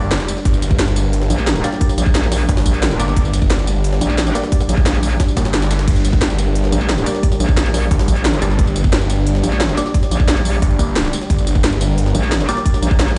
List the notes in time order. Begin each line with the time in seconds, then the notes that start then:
Already playing: G1 G3 D4 G4 D5
0.11 snare, closed hi-hat, open hi-hat
0.20 snare, tambourine
0.28 snare, closed hi-hat, tambourine
0.37 snare
0.45 G1 A#4, kick, closed hi-hat
0.54 tambourine
0.62 snare, closed hi-hat, tambourine
0.71 kick, closed hi-hat
0.79 snare, closed hi-hat
0.88 tambourine
0.96 snare, closed hi-hat, tambourine
1.13 closed hi-hat
1.22 snare
1.30 A#1, snare, closed hi-hat, tambourine
1.39 snare, closed hi-hat
1.47 snare, closed hi-hat
1.55 snare, tambourine
1.64 A#3 G4 D5, snare, closed hi-hat, tambourine
1.72 snare
1.81 kick, closed hi-hat
1.89 snare, tambourine
1.98 A#1, snare, closed hi-hat, tambourine
2.06 kick
2.15 snare, closed hi-hat
2.23 tambourine
2.32 snare, open hi-hat, tambourine
2.49 G1, kick, closed hi-hat
2.57 snare, open hi-hat
2.66 A#1, kick, closed hi-hat, tambourine
2.74 closed hi-hat
2.83 snare, closed hi-hat, open hi-hat
2.91 snare, tambourine
2.99 G1 A#3 G4 D5, snare, closed hi-hat, tambourine
3.08 snare
3.16 G1 D5, kick, closed hi-hat
3.25 tambourine
3.33 snare, closed hi-hat, tambourine
3.42 kick, closed hi-hat
3.50 snare, closed hi-hat
3.59 tambourine
3.67 snare, closed hi-hat, tambourine
3.84 closed hi-hat
3.93 snare
4.01 A#1, snare, closed hi-hat, tambourine
4.10 snare, closed hi-hat
4.18 snare, closed hi-hat
4.27 snare, tambourine
4.35 A#3 G4 D5, snare, closed hi-hat, tambourine
4.44 snare
4.52 kick, closed hi-hat
4.61 snare, tambourine
4.69 A#1, snare, closed hi-hat, tambourine
4.77 kick
4.86 snare, closed hi-hat
4.94 tambourine
5.03 snare, closed hi-hat, open hi-hat, tambourine
5.20 kick, snare, closed hi-hat
5.28 tambourine
5.37 G1 A#3 G4 D5, kick, snare, closed hi-hat, tambourine
5.45 snare, closed hi-hat
5.54 snare, closed hi-hat
5.62 snare, closed hi-hat, tambourine
5.71 snare, closed hi-hat, tambourine
5.79 snare, closed hi-hat
5.88 G1 A#4, kick, closed hi-hat, crash
5.96 tambourine
6.05 snare, closed hi-hat, tambourine
6.13 kick, closed hi-hat
6.21 snare, closed hi-hat
6.30 tambourine
6.38 snare, closed hi-hat, tambourine
6.55 closed hi-hat
6.64 snare
6.72 A#1, snare, closed hi-hat, tambourine
6.81 snare, closed hi-hat
6.89 snare, closed hi-hat
6.98 snare, tambourine
7.06 A#3 G4 D5, snare, closed hi-hat, tambourine
7.15 snare
7.23 kick, closed hi-hat
7.32 snare, tambourine
7.40 A#1, snare, closed hi-hat, tambourine
7.49 kick
7.57 snare, closed hi-hat
7.66 tambourine
7.74 snare, open hi-hat, tambourine
7.91 G1, kick, closed hi-hat
7.99 snare, open hi-hat
8.08 A#1, kick, closed hi-hat, tambourine
8.16 closed hi-hat
8.25 snare, closed hi-hat, open hi-hat
8.33 snare, tambourine
8.42 G1 A#3 G4 D5, snare, closed hi-hat, tambourine
8.50 snare
8.59 G1 D5, kick, closed hi-hat
8.67 tambourine
8.76 snare, closed hi-hat, tambourine
8.84 kick, closed hi-hat
8.93 snare, closed hi-hat
9.01 tambourine
9.10 snare, closed hi-hat, tambourine
9.27 closed hi-hat
9.35 snare
9.43 A#1, snare, closed hi-hat, tambourine
9.52 snare, closed hi-hat
9.60 snare, closed hi-hat
9.69 snare, tambourine
9.77 A#3 G4 D5, snare, closed hi-hat, tambourine
9.86 snare
9.94 kick, closed hi-hat
10.03 snare, tambourine
10.11 A#1, snare, closed hi-hat, tambourine
10.20 kick
10.28 snare, closed hi-hat
10.37 tambourine
10.45 closed hi-hat, open hi-hat, tambourine
10.62 G1, kick, closed hi-hat
10.71 closed hi-hat
10.79 A#3 G4 D5, kick, closed hi-hat, tambourine
10.96 snare, closed hi-hat, open hi-hat
11.05 snare, tambourine
11.13 snare, closed hi-hat, tambourine
11.22 snare
11.30 G1 A#4, kick, closed hi-hat
11.39 tambourine
11.47 snare, closed hi-hat, tambourine
11.55 kick, closed hi-hat
11.64 snare, closed hi-hat
11.72 tambourine
11.81 snare, closed hi-hat, tambourine
11.98 closed hi-hat
12.06 snare
12.15 A#1, snare, closed hi-hat, tambourine
12.23 snare, closed hi-hat
12.32 snare, closed hi-hat
12.40 snare, tambourine
12.49 A#3 G4 D5, snare, closed hi-hat, tambourine
12.57 snare
12.66 kick, closed hi-hat
12.74 snare, tambourine
12.83 A#1, snare, closed hi-hat, tambourine
12.91 kick
13.00 snare, closed hi-hat
13.08 tambourine